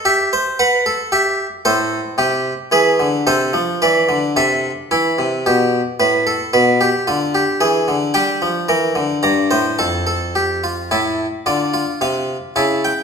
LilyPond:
<<
  \new Staff \with { instrumentName = "Harpsichord" } { \time 3/4 \key a \minor \tempo 4 = 111 << { e''4 fis''4 e''4 | c''2 b'4 | c''4 d''4 e''4 | r2. |
r2. | \key d \minor g''2 bes''4 | a''2 a''4 | d''4 f''4 a''8 g''8 | } \\ { g'8 c''8 b'8 a'8 g'4 | a'4 g'4 gis'4 | a'4 b'4 a'4 | e'4 g'4 b'8 a'8 |
b'8 g'8 f'8 g'8 gis'4 | g'4 bes'4 d''8 c''8 | a'8 a'8 g'8 f'8 e'4 | f'8 f'4. e'4 | } >> }
  \new Staff \with { instrumentName = "Harpsichord" } { \clef bass \time 3/4 \key a \minor r2. | a,4 c4 e8 d8 | c8 f8 e8 d8 c4 | e8 c8 b,4 a,4 |
b,4 d4 e8 d8 | \key d \minor g8 f8 e8 d8 g,8 a,8 | f,2 a,4 | d4 c4 cis4 | }
>>